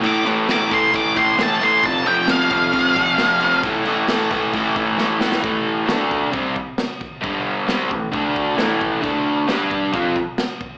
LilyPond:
<<
  \new Staff \with { instrumentName = "Lead electric guitar" } { \time 4/4 \key a \minor \tempo 4 = 134 d'''8 r8 d'''8 c'''8 d'''8 c'''8 a''8 c'''8 | a''8 g''8 f''2. | r1 | r1 |
r1 | r1 | }
  \new Staff \with { instrumentName = "Overdriven electric guitar" } { \clef bass \time 4/4 \key a \minor <a, e a>8 <a, e a>8 <a, e a>8 <a, e a>8 <a, e a>8 <a, e a>8 <a, e a>8 <a, e a>8 | <f, c f>8 <f, c f>8 <f, c f>8 <f, c f>8 <f, c f>8 <f, c f>8 <f, c f>8 <f, c f>8 | <a, e a>8 <a, e a>8 <a, e a>8 <a, e a>8 <a, e a>8 <a, e a>8 <a, e a>8 <a, e a>8 | <a, e a>4 <d a d'>4 <c g c'>8 r4. |
<g, d g>4 <c g c'>8 <a, e>8 <d a d'>4 <a, e a>4 | <d a d'>4 <g d' g'>4 <f c' f'>8 r4. | }
  \new DrumStaff \with { instrumentName = "Drums" } \drummode { \time 4/4 cymc8 cymc8 <cymc sn>8 <cymc bd>8 <cymc bd>8 <cymc bd>8 <cymc sn>8 cymc8 | <cymc bd>8 cymc8 <cymc sn>8 <cymc bd>8 <cymc bd>8 <cymc bd>8 <cymc sn>8 cymc8 | <cymc bd>8 cymc8 <cymc sn>8 <cymc bd>8 <cymc bd>8 <cymc bd>8 sn8 sn16 sn16 | <cymc bd>4 <cymc sn>8 bd8 <cymc bd>8 bd8 <cymc sn>8 bd8 |
<cymc bd>4 <cymc sn>8 bd8 <cymc bd>8 bd8 <cymc sn>8 bd8 | <cymc bd>4 <cymc sn>8 bd8 <cymc bd>8 bd8 <cymc sn>8 bd8 | }
>>